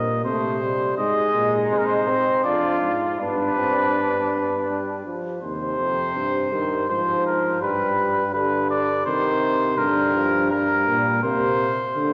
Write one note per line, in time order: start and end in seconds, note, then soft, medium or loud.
0.00 0.26 A#2 medium
0.00 0.25 A#3 medium
0.00 0.24 D#5 medium
0.25 0.97 C3 medium
0.25 0.64 A3 medium
0.25 0.96 C5 medium
0.62 1.00 G3 medium
0.97 1.33 G#2 medium
0.97 2.09 G#3 medium
0.97 2.41 D#4 medium
0.97 1.55 D#5 medium
1.34 1.72 A#2 medium
1.71 2.27 C3 medium
1.71 1.79 C5 medium
1.78 1.87 A#4 medium
1.86 2.43 C5 medium
2.08 2.46 C4 medium
2.44 2.81 F2 medium
2.44 2.93 D4 medium
2.44 3.20 F4 medium
2.44 2.91 D5 medium
2.81 3.20 G#2 medium
3.18 5.05 G2 medium
3.18 3.54 B3 medium
3.18 5.06 D4 medium
3.18 5.01 B4 medium
3.56 3.96 C4 medium
3.94 4.31 B3 medium
4.32 4.68 B3 medium
4.69 5.05 G3 medium
5.06 5.42 F3 medium
5.42 5.77 D#2 medium
5.42 6.54 C3 medium
5.42 6.85 C5 medium
5.79 6.15 F2 medium
6.15 6.51 G2 medium
6.52 6.87 G2 medium
6.52 6.88 D#3 medium
6.88 7.60 G#2 medium
6.88 7.63 F3 medium
6.88 7.25 C5 medium
7.27 7.62 A#4 medium
7.61 9.04 G2 medium
7.61 8.35 G3 medium
7.61 8.33 B4 medium
8.34 9.05 D3 medium
8.34 8.70 B4 medium
8.70 9.05 D5 medium
9.06 9.80 C3 medium
9.06 9.77 D#3 medium
9.06 9.80 C5 medium
9.78 10.87 G2 loud
9.78 10.16 D3 medium
9.78 10.51 A#4 medium
10.15 10.53 F3 medium
10.51 10.86 G3 medium
10.51 11.22 A#4 medium
10.87 11.22 A#2 medium
10.87 11.22 G3 medium
11.23 11.70 C3 loud
11.23 11.70 A#3 medium
11.23 12.13 C5 medium
11.96 12.13 D3 loud
11.96 12.13 A3 medium